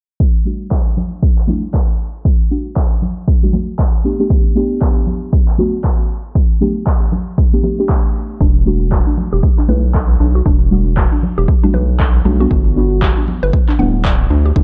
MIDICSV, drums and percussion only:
0, 0, Header, 1, 2, 480
1, 0, Start_track
1, 0, Key_signature, 1, "minor"
1, 0, Tempo, 512821
1, 188, Time_signature, 4, 2, 24, 8
1, 13697, End_track
2, 0, Start_track
2, 0, Title_t, "Drums"
2, 188, Note_on_c, 9, 36, 113
2, 281, Note_off_c, 9, 36, 0
2, 668, Note_on_c, 9, 36, 98
2, 670, Note_on_c, 9, 39, 121
2, 761, Note_off_c, 9, 36, 0
2, 764, Note_off_c, 9, 39, 0
2, 909, Note_on_c, 9, 64, 77
2, 1003, Note_off_c, 9, 64, 0
2, 1148, Note_on_c, 9, 36, 119
2, 1241, Note_off_c, 9, 36, 0
2, 1293, Note_on_c, 9, 39, 36
2, 1380, Note_on_c, 9, 63, 80
2, 1386, Note_off_c, 9, 39, 0
2, 1392, Note_on_c, 9, 64, 72
2, 1474, Note_off_c, 9, 63, 0
2, 1485, Note_off_c, 9, 64, 0
2, 1627, Note_on_c, 9, 36, 98
2, 1630, Note_on_c, 9, 39, 116
2, 1721, Note_off_c, 9, 36, 0
2, 1724, Note_off_c, 9, 39, 0
2, 2107, Note_on_c, 9, 36, 117
2, 2201, Note_off_c, 9, 36, 0
2, 2587, Note_on_c, 9, 36, 103
2, 2590, Note_on_c, 9, 39, 118
2, 2681, Note_off_c, 9, 36, 0
2, 2684, Note_off_c, 9, 39, 0
2, 2828, Note_on_c, 9, 64, 73
2, 2921, Note_off_c, 9, 64, 0
2, 3067, Note_on_c, 9, 36, 119
2, 3161, Note_off_c, 9, 36, 0
2, 3305, Note_on_c, 9, 64, 83
2, 3316, Note_on_c, 9, 63, 88
2, 3398, Note_off_c, 9, 64, 0
2, 3409, Note_off_c, 9, 63, 0
2, 3547, Note_on_c, 9, 36, 104
2, 3550, Note_on_c, 9, 39, 117
2, 3641, Note_off_c, 9, 36, 0
2, 3644, Note_off_c, 9, 39, 0
2, 4027, Note_on_c, 9, 36, 118
2, 4121, Note_off_c, 9, 36, 0
2, 4507, Note_on_c, 9, 36, 106
2, 4510, Note_on_c, 9, 39, 118
2, 4601, Note_off_c, 9, 36, 0
2, 4604, Note_off_c, 9, 39, 0
2, 4744, Note_on_c, 9, 64, 74
2, 4837, Note_off_c, 9, 64, 0
2, 4987, Note_on_c, 9, 36, 122
2, 5081, Note_off_c, 9, 36, 0
2, 5132, Note_on_c, 9, 39, 37
2, 5226, Note_off_c, 9, 39, 0
2, 5230, Note_on_c, 9, 64, 78
2, 5231, Note_on_c, 9, 63, 85
2, 5323, Note_off_c, 9, 64, 0
2, 5324, Note_off_c, 9, 63, 0
2, 5467, Note_on_c, 9, 36, 109
2, 5470, Note_on_c, 9, 39, 117
2, 5561, Note_off_c, 9, 36, 0
2, 5563, Note_off_c, 9, 39, 0
2, 5947, Note_on_c, 9, 36, 117
2, 6041, Note_off_c, 9, 36, 0
2, 6194, Note_on_c, 9, 64, 72
2, 6287, Note_off_c, 9, 64, 0
2, 6427, Note_on_c, 9, 36, 109
2, 6430, Note_on_c, 9, 39, 115
2, 6521, Note_off_c, 9, 36, 0
2, 6524, Note_off_c, 9, 39, 0
2, 6666, Note_on_c, 9, 64, 76
2, 6760, Note_off_c, 9, 64, 0
2, 6907, Note_on_c, 9, 36, 126
2, 7001, Note_off_c, 9, 36, 0
2, 7144, Note_on_c, 9, 63, 77
2, 7149, Note_on_c, 9, 64, 78
2, 7238, Note_off_c, 9, 63, 0
2, 7243, Note_off_c, 9, 64, 0
2, 7388, Note_on_c, 9, 36, 102
2, 7390, Note_on_c, 9, 39, 107
2, 7481, Note_off_c, 9, 36, 0
2, 7484, Note_off_c, 9, 39, 0
2, 7868, Note_on_c, 9, 36, 116
2, 7961, Note_off_c, 9, 36, 0
2, 8348, Note_on_c, 9, 36, 101
2, 8351, Note_on_c, 9, 39, 108
2, 8442, Note_off_c, 9, 36, 0
2, 8445, Note_off_c, 9, 39, 0
2, 8588, Note_on_c, 9, 64, 76
2, 8682, Note_off_c, 9, 64, 0
2, 8828, Note_on_c, 9, 36, 119
2, 8922, Note_off_c, 9, 36, 0
2, 8973, Note_on_c, 9, 39, 34
2, 9065, Note_on_c, 9, 63, 89
2, 9066, Note_off_c, 9, 39, 0
2, 9070, Note_on_c, 9, 64, 74
2, 9158, Note_off_c, 9, 63, 0
2, 9164, Note_off_c, 9, 64, 0
2, 9308, Note_on_c, 9, 36, 102
2, 9311, Note_on_c, 9, 39, 109
2, 9402, Note_off_c, 9, 36, 0
2, 9404, Note_off_c, 9, 39, 0
2, 9788, Note_on_c, 9, 36, 112
2, 9882, Note_off_c, 9, 36, 0
2, 10268, Note_on_c, 9, 36, 97
2, 10271, Note_on_c, 9, 39, 115
2, 10362, Note_off_c, 9, 36, 0
2, 10364, Note_off_c, 9, 39, 0
2, 10512, Note_on_c, 9, 64, 72
2, 10605, Note_off_c, 9, 64, 0
2, 10748, Note_on_c, 9, 36, 115
2, 10842, Note_off_c, 9, 36, 0
2, 10983, Note_on_c, 9, 63, 76
2, 10986, Note_on_c, 9, 64, 75
2, 11076, Note_off_c, 9, 63, 0
2, 11080, Note_off_c, 9, 64, 0
2, 11228, Note_on_c, 9, 36, 101
2, 11231, Note_on_c, 9, 39, 108
2, 11321, Note_off_c, 9, 36, 0
2, 11324, Note_off_c, 9, 39, 0
2, 11708, Note_on_c, 9, 36, 109
2, 11801, Note_off_c, 9, 36, 0
2, 12188, Note_on_c, 9, 36, 97
2, 12191, Note_on_c, 9, 39, 112
2, 12281, Note_off_c, 9, 36, 0
2, 12285, Note_off_c, 9, 39, 0
2, 12429, Note_on_c, 9, 64, 76
2, 12522, Note_off_c, 9, 64, 0
2, 12668, Note_on_c, 9, 36, 115
2, 12761, Note_off_c, 9, 36, 0
2, 12813, Note_on_c, 9, 39, 34
2, 12907, Note_off_c, 9, 39, 0
2, 12909, Note_on_c, 9, 64, 74
2, 12916, Note_on_c, 9, 63, 80
2, 13002, Note_off_c, 9, 64, 0
2, 13010, Note_off_c, 9, 63, 0
2, 13148, Note_on_c, 9, 36, 99
2, 13151, Note_on_c, 9, 39, 109
2, 13241, Note_off_c, 9, 36, 0
2, 13244, Note_off_c, 9, 39, 0
2, 13628, Note_on_c, 9, 36, 113
2, 13697, Note_off_c, 9, 36, 0
2, 13697, End_track
0, 0, End_of_file